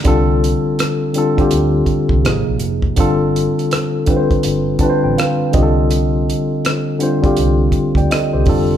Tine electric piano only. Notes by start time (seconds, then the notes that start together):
0.04 D3 G3 C4 F4
0.08 A4
1.14 D3 G3 C4 F4
1.18 A4
1.37 D3 G3 C4 F4
1.41 G4
2.23 C3 F3 A#3 D#4
2.28 G#4
2.96 D3 G3 C4 F4
3.00 A4
4.06 D3 G3 C4 F4
4.10 B4
4.17 C5
4.79 D3 G3 C4 F4 A5
4.83 B4
4.89 C5
5.04 G5
5.18 F5
5.52 D3 G3 C4 F4 D#5
5.56 G4
5.63 A4
6.98 D3 G3 C4 F4
7.03 C5
7.22 D3 G3 C4 F4
7.26 G4
7.97 D5 G5
8.11 A4 D#5
8.33 G4 C5
8.45 D3 G3 C4 F4
8.49 A4